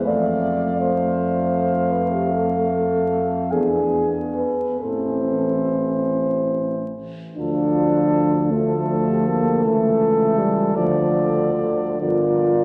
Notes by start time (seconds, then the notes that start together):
0.06 F2 A3 D5 F5
0.80 C5
1.17 A3
1.92 B4
2.12 G4
2.32 A4
3.51 E2 B3 D4 G#4 G#5
4.36 B4
4.80 A1 E3 C4 A4 C5
7.36 D2 F3 D4 F4 A4
8.50 F3 A3 F4 A4
9.10 G4
9.27 A#3
9.64 C#2 E3 A3 A4
10.38 G3
10.76 D2 D3 F3 A4 D5
12.01 G1 D3 F4 A#4 D5